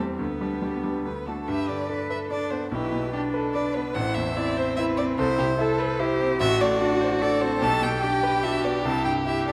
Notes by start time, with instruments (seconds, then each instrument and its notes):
Already playing: grand piano E2 G3 C4, violin C4
0.00 grand piano G4
0.18 grand piano D2, violin B3 B4, cello B3
0.41 grand piano G3 D4 G4
0.62 grand piano G3 D4 G4
0.84 grand piano G3 D4 G4
1.04 grand piano D2, violin B4
1.26 grand piano A3 D4 F#4, violin A4
1.47 grand piano G2, cello G4, violin B4 E5
1.69 grand piano D3, violin D5
1.89 grand piano D4, violin A4, cello B4
2.10 grand piano B4, violin E5
2.31 grand piano D4, cello D4, violin D5
2.51 grand piano B3, violin C5
2.71 grand piano B1, cello E4, violin G4 B4
2.92 grand piano B2
3.13 grand piano D4, cello D4, violin G4
3.34 violin A4, grand piano B4
3.54 grand piano D4, violin B4 D5
3.74 grand piano B3, violin B4
3.94 grand piano A1, cello E4, violin C5 F#5
4.14 grand piano E2, violin E5
4.37 cello C4, grand piano E4, violin D5
4.57 grand piano C5, violin C5
4.76 grand piano E4, violin B4 E5
4.97 grand piano C4, violin D5
5.18 grand piano C2, cello E4, violin A4 C5
5.38 grand piano C3, violin G4
5.59 grand piano E4, cello A4, violin A4
5.79 violin B4, grand piano C5
5.99 grand piano E4, cello G4, violin C5
6.20 grand piano C4
6.39 grand piano A1, cello F#4, violin F#4 E5
6.60 grand piano A2, violin D5
6.81 grand piano D4, cello F#4
7.01 grand piano C5
7.21 grand piano D4, cello A4, violin D5
7.41 grand piano C4, violin C5
7.62 grand piano B1, violin G4 A5
7.82 grand piano B2, violin G5
8.03 grand piano D4, cello G4
8.23 grand piano B4
8.43 grand piano D4, cello F#4, violin E5
8.64 grand piano B3, violin D5
8.84 grand piano C2, cello E4, violin A5
9.05 grand piano G2, violin G5
9.26 grand piano E4, cello G4, violin E5
9.47 grand piano A4, violin D5